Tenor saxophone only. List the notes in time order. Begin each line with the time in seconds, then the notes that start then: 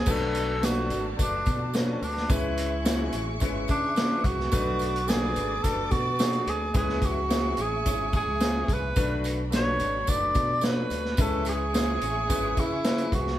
Already playing: G#4
0.11 A4
0.65 F#4
1.20 D4
1.76 C#4
2.03 D4
2.31 E4
3.70 D4
4.25 F#4
5.09 G#4
5.63 A4
5.91 F#4
6.49 G#4
6.77 G#4
7.05 F#4
7.61 G#4
8.16 G#4
8.73 B4
9.56 C#5
10.09 D5
10.65 B4
11.21 A4
11.49 G#4
12.60 E4
13.14 F#4